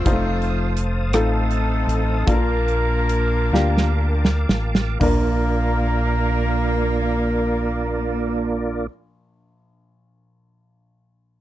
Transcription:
Already playing: F3 A3 C4 F4 C5
0.05 F1 G3 D#4 F4 C5 F5 A5 D#6, kick, closed hi-hat
0.12 A3
0.42 closed hi-hat
0.77 closed hi-hat
1.13 A1 A3 D#4 F4 A4, cross-stick, closed hi-hat
1.17 C4 D#4
1.51 closed hi-hat
1.87 A1, closed hi-hat
2.27 A#1 A#2 A#3 D4 F4 A4 A#4 F5 D6, kick, closed hi-hat
2.34 A#4
2.68 closed hi-hat
3.09 closed hi-hat
3.52 D2 A#3 D4 F4 G4, snare
3.77 snare
4.25 snare
4.49 A1, snare
4.75 snare
5.00 A#1 A#3 D4 F4 A#4 D5, kick, floor tom, open hi-hat

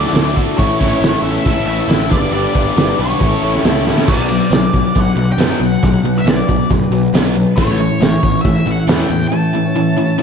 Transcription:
Already playing: D3 F#3 A3 D4 F#4 A4 D5
0.02 E4 F#4 A4, snare
0.13 D2 D3 F#3 A3 D4 E4 F#4 A4, snare, closed hi-hat
0.35 D3 F#3 A3 D4 E4 F#4 A4, kick
0.46 E4 F#4 A4
0.58 A1 A2 E3 A3 C#4 E4 A4 C#5, kick, closed hi-hat
0.79 A1 A2 E3 A3 C#4 E4 A4 C#5, kick, snare
0.91 A3 C#4 E4 C#5
1.00 A1 A2 E3 A3 C#4 A4, snare, closed hi-hat
1.04 E4 C#5
1.22 A1 A2 E3 A3 C#4 E4 A4 C#5 E5
1.45 A1 A2 E3 A3 C#4 E4 A4, kick, closed hi-hat
1.57 A3 C#4 E4 C#5
1.66 A1 A2 E3 A3 C#4 E4 A4 E5
1.70 C#5
1.78 A3 C#4 E4 C#5
1.88 A1 A2 E3 A3 C#4 E4 A4 C#5, snare, closed hi-hat
2.10 G1 G2 D3 G3 B3 D4 G4 D5, kick
2.14 B4
2.22 D4 G4 B4
2.31 G1 G2 D3 G3 B3 D4 G4 D5, closed hi-hat
2.36 B4
2.54 G1 G2 D3 G3 B3 D4 G4 B4, kick
2.66 D4 G4 B4
2.76 G1 G2 D3 G3 B3 D4 G4 B4, snare, closed hi-hat
2.98 B1 G2 D3 G3 B3 D4 G4 B4 C#5
3.19 A1 A2 E3 A3 C#4 E4 A4, kick, closed hi-hat
3.32 A3 C#4 E4 A4
3.42 A1 A2 E3 A3 C#4 E4 A4
3.54 A3 C#4 E4 A4, snare
3.64 C#2 A2 E3 A3 C#4 E4 A4, snare, closed hi-hat
3.86 A2 E3 A3 C#4 E4 A4, snare
3.97 A3 C#4 E4 A4, snare
4.08 B1 B2 F#3 B3 D4 F#4 B4 D5, kick, crash
4.30 B2 F#3
4.41 B3 D4 F#4 B4
4.51 B1 B2 F#3 B3 D4, snare, closed hi-hat
4.55 F#4 B4
4.73 B1 B2 F#3 B3 D4 F#4, kick
4.78 B4
4.85 D4 F#4 B4
4.89 B3
4.96 B1 B2 F#3 F#5, kick, closed hi-hat
5.06 B3 D4 F#4 B4
5.15 B1 B2 F#3 B3 D4 F#4
5.20 B4
5.27 B3 D4 F#4 B4
5.32 G5
5.37 F#2 B2 F#3 B3 D4 F#4 B4, snare, closed hi-hat
5.50 B3 D4 F#4 B4
5.60 B1 B2 F#3 B3 D4 F#4 B4
5.65 F#5
5.83 B1 B2 F#3 B3 D4 F#4 B4, kick, closed hi-hat
6.03 B1 B2 F#3
6.15 B3 D4 F#4 B4 E5
6.25 B1 B2 F#3 B3 D4 F#4, snare, closed hi-hat
6.29 B4 D5
6.48 B1 B2 F#3 B3 D4 F#4 B4, kick
6.58 B3 D4 F#4 B4
6.70 F#1 B2 F#3, kick, closed hi-hat
6.81 B3 D4 F#4 B4
6.91 B1 B2 F#3 B3 D4 F#4 B4
7.03 B3 D4 F#4 B4
7.13 B1 B2 F#3 B3 D4 F#4 B4, snare, closed hi-hat
7.26 B3 D4 F#4 B4
7.35 B2 F#3 B3 D4 F#4
7.40 B4
7.56 A1 A2 E3 A3 C#4 E4 C#5, kick, closed hi-hat
7.70 snare
7.79 A2 E3
7.91 A3 C#4 E4 C#5
8.00 A1 A2 E3 A3 C#4 E4 C#5, snare, closed hi-hat
8.22 A1 A2 E3 A3 C#4 E4 C#5, kick
8.41 A1 E5, kick, closed hi-hat
8.45 A2 E3
8.55 A3 C#4 E4 C#5
8.66 A1 A2 E3 A3 C#4 E4 C#5
8.72 F#5
8.78 A3 C#4 E4 C#5
8.87 E2 A2 E3 A3 C#4 C#5, snare, closed hi-hat
8.99 A3 C#4 E4 C#5 G5
9.10 E2 A2 E3 A3 C#4 E4 C#5
9.28 A5
9.32 A2 E3 A3 C#4 E4 C#5
9.55 A2 E3
9.65 A3 C#4 E4 C#5
9.75 A2 E3 A3 C#4 E4 C#5
9.96 A2 E3 A3 C#4 E4 C#5
10.05 A3 C#4 E4 C#5
10.19 A2 E3

